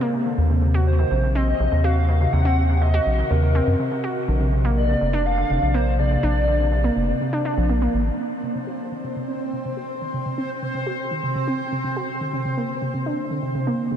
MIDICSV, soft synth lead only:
0, 0, Header, 1, 2, 480
1, 0, Start_track
1, 0, Key_signature, -6, "minor"
1, 0, Tempo, 487805
1, 372, Time_signature, 4, 2, 24, 8
1, 13743, End_track
2, 0, Start_track
2, 0, Title_t, "Soft synth lead"
2, 0, Program_c, 0, 80
2, 0, Note_on_c, 0, 72, 95
2, 131, Note_off_c, 0, 72, 0
2, 852, Note_on_c, 0, 72, 102
2, 1299, Note_off_c, 0, 72, 0
2, 1331, Note_on_c, 0, 75, 105
2, 1808, Note_on_c, 0, 77, 111
2, 1823, Note_off_c, 0, 75, 0
2, 2284, Note_off_c, 0, 77, 0
2, 2290, Note_on_c, 0, 78, 123
2, 2770, Note_on_c, 0, 75, 111
2, 2785, Note_off_c, 0, 78, 0
2, 3250, Note_on_c, 0, 70, 93
2, 3265, Note_off_c, 0, 75, 0
2, 3971, Note_off_c, 0, 70, 0
2, 4693, Note_on_c, 0, 74, 108
2, 5173, Note_on_c, 0, 77, 121
2, 5188, Note_off_c, 0, 74, 0
2, 5649, Note_off_c, 0, 77, 0
2, 5655, Note_on_c, 0, 72, 102
2, 5877, Note_off_c, 0, 72, 0
2, 5895, Note_on_c, 0, 74, 111
2, 7534, Note_off_c, 0, 74, 0
2, 13743, End_track
0, 0, End_of_file